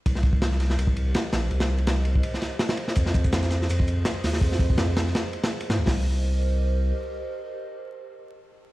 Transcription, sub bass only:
X:1
M:4/4
L:1/16
Q:"Swing 16ths" 1/4=165
K:Cm
V:1 name="Sub bass" clef=bass
C,,8 C,,4 z2 B,,,2 | C,,8 z8 | F,,8 F,,4 z2 E,,2 | F,,8 z6 A,, E,, |
C,,12 z4 | z16 |]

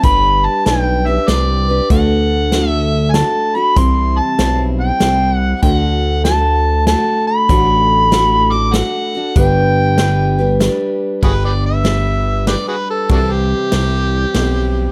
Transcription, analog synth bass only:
X:1
M:3/4
L:1/8
Q:"Swing" 1/4=96
K:G
V:1 name="Analog synth bass" clef=bass
G,,,2 B,,,2 C,,2 | D,,6 | C,,2 B,,,2 C,,2 | D,,6 |
A,,,6 | G,,,6 | G,,,6 | C,,2 C,,2 B,,,2 |]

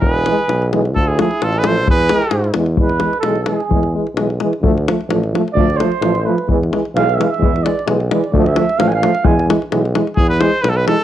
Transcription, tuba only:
X:1
M:2/4
L:1/8
Q:"Swing 16ths" 1/4=130
K:none
V:1 name="Tuba" clef=bass
E,,,2 B,,,2 | D,,2 A,,,2 | E,,2 ^G,, E,, | E,,2 B,,,2 |
E,,2 B,,,2 | D,,2 A,,,2 | D,,2 A,,,2 | E,,2 B,,,2 |
E,,2 B,,,2 | D,,2 A,,,2 | E,,2 B,,,2 | E,,2 B,,,2 |]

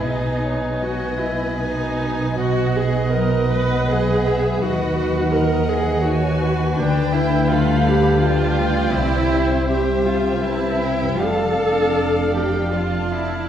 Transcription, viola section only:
X:1
M:3/4
L:1/8
Q:1/4=81
K:B
V:1 name="Viola section"
D2 F E D2 | F G A B G2 | F2 A G F2 | [K:C] D E F G F2 |
E2 G F E2 | A3 G F E |]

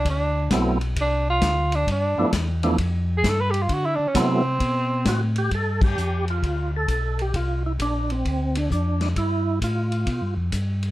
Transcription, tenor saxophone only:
X:1
M:4/4
L:1/16
Q:"Swing" 1/4=132
K:Gmix
V:1 name="Tenor saxophone"
D4 z4 D2 F4 D2 | D4 z6 z _A =A B G F | ^F E D ^C =C8- C3 z | z16 |
z16 | z16 |]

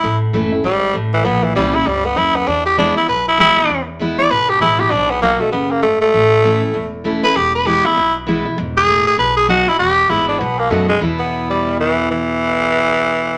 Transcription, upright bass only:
X:1
M:4/4
L:1/8
Q:"Swing" 1/4=197
K:Bdor
V:1 name="Upright bass" clef=bass
A,,,2 F,,,2 G,,,2 A,,,2 | ^A,,,2 =C,,2 ^C,,2 ^D,,2 | E,,4 B,,,4 | E,,4 G,,,2 A,,,2 |
B,,,4 F,,,4 | A,,,4 E,,,4 | E,,,4 B,,,4 | E,,,4 B,,,4 |
E,,,2 G,,,2 B,,,2 F,,2 | E,,8- | E,,8 |]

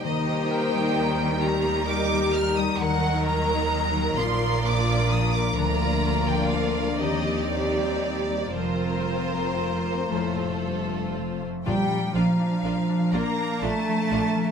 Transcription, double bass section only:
X:1
M:6/8
L:1/8
Q:3/8=42
K:Bb
V:1 name="Double bass section" clef=bass
E,,6 | E,,3 B,,,3 | D,,3 E,,3 | F,,,3 F,,,3 |
B,,, B,,, B,,, B,,, B,,, B,,, |]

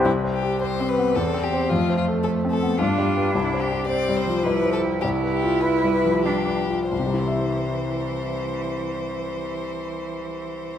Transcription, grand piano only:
X:1
M:3/4
L:1/8
Q:1/4=103
K:C
V:1 name="Grand piano"
(3C,, c G (3c C B, (3E,, C [Gc] | (3F,, c A (3c C B, (3G,, G, [GB] | (3C,, c G (3c G, F, (3G, c G | (3C,, B F (3B G, F, (3G, B F |
[C,,C,G,Ece]6- | [C,,C,G,Ece]6 |]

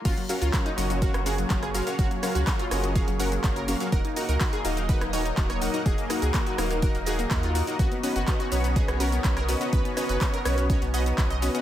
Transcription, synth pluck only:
X:1
M:4/4
L:1/16
Q:1/4=124
K:F#
V:1 name="Synth pluck"
E F, F, E F, D F, F, F F, G F, F, G F, F, | F F, F, F F, E F, F, G F, A F, F, A F, F, | A D D A D G D D B D c D D c D D | G A, A, G A, F A, A, A A, G A, A, E A, A, |
F B, B, F B, F B, B, G B, A B, B, A B, B, | B B, B, B B, A B, B, c B, d B, B, d B, B, |]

